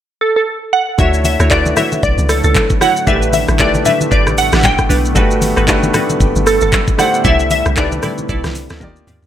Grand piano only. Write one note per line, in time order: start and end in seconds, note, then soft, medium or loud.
0.98 1.42 A3 medium
0.98 1.42 D4 medium
0.98 1.42 E4 medium
0.98 1.43 F#4 medium
0.98 1.43 C#5 medium
1.50 2.35 A3 medium
1.50 2.35 D4 medium
1.50 2.35 E4 medium
1.50 2.36 F#4 medium
1.50 2.36 B4 medium
3.06 3.50 A3 medium
3.06 3.51 D4 medium
3.06 3.51 E4 medium
3.06 3.52 G4 medium
3.06 3.16 A4 medium
3.16 3.55 B4 medium
3.59 4.43 A3 medium
3.59 4.44 D4 medium
3.59 4.44 E4 medium
3.59 4.45 G4 medium
3.59 4.45 B4 medium
5.15 5.59 A3 medium
5.15 5.59 D4 medium
5.15 5.60 F#4 medium
5.15 5.60 G4 medium
5.15 5.61 B4 loud
5.67 6.52 A3 loud
5.67 6.52 D4 medium
5.67 6.53 F#4 medium
5.67 6.53 G4 medium
5.67 6.54 B4 loud
6.98 7.62 A3 medium
6.98 7.63 D4 medium
6.98 7.63 E4 medium
6.98 7.64 G4 medium
6.98 7.64 C5 medium
7.76 8.61 A3 medium
7.76 8.61 D4 medium
7.76 8.62 E4 medium
7.76 8.62 G4 medium
7.76 8.63 B4 medium
8.80 9.24 A#3 loud
8.80 9.25 D#4 medium
8.80 9.25 F4 medium
8.80 9.25 G4 medium
8.80 9.26 D5 loud